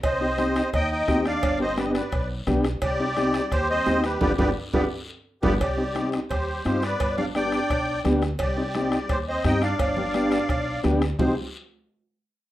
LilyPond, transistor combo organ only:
\new Staff \with { instrumentName = "Transistor combo organ" } { \time 4/4 \key c \minor \tempo 4 = 172 r8 <c' ees' g'>8 <c' ees' g'>8 r4. <c' ees' g'>8 r8 | r8 <b d' g'>8 <b d' g'>8 r4. <b d' g'>8 r8 | r8 <c' ees' g'>8 <c' ees' g'>8 r4. <c' ees' g'>8 r8 | <d' f' g'>8 <d' f' g'>8 r8 <d' f' g'>8 r4. <d' f' g'>8 |
r8 <c' ees' g'>8 <c' ees' g'>8 r4. <c' ees' f'>8 r8 | r8 <b d' g'>8 <b d' g'>8 r4. <b d' g'>8 r8 | r8 <c' ees' g'>8 <c' ees' g'>8 r4. <c' ees' g'>8 r8 | r8 <b d' g'>8 <b d' g'>8 r4. <b d' g'>8 r8 |
<c' ees' g'>8 r2. r8 | }